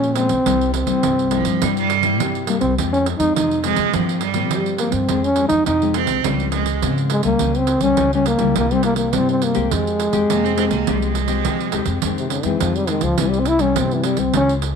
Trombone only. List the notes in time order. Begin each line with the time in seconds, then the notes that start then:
Already playing: C#4
0.15 C4
0.74 C4
2.48 A#3
2.61 C4
2.93 C#4
3.18 D#4
3.36 D#4
4.79 A#3
4.93 C4
5.24 C#4
5.48 D#4
5.66 D#4
7.12 G#3
7.25 A#3
7.57 C4
7.82 C#4
8.14 C#4
8.28 A#3
8.58 A#3
8.73 C4
8.85 A#3
8.98 A#3
9.15 C4
9.30 C4
9.44 A#3
9.73 G#3
12.18 C3
12.31 C#3
12.44 E3
12.61 F3
12.77 G3
12.89 D#3
13.03 F3
13.21 E3
13.30 G3
13.40 C4
13.48 E4
13.61 C#4
13.79 C4
13.95 E3
14.06 G3
14.20 C4
14.37 C#4